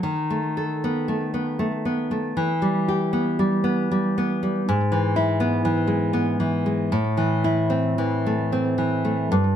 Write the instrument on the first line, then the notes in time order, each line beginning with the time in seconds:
nylon-string guitar
0.03 D#3
0.30 A3
0.57 A4
0.84 B3
1.08 A3
1.34 B3
1.59 A3
1.85 B3
2.11 A3
2.37 E3
2.62 G3
2.88 G4
3.13 B3
3.39 G3
3.64 B3
3.91 G3
4.18 B3
4.43 G3
4.69 G#2
4.92 E3
5.16 E4
5.40 B3
5.65 E3
5.87 G#3
6.13 B3
6.40 E3
6.66 G#3
6.92 A2
7.17 E3
7.44 E4
7.70 C4
7.98 E3
8.26 A3
8.52 C4
8.78 E3
9.05 A3
9.32 G2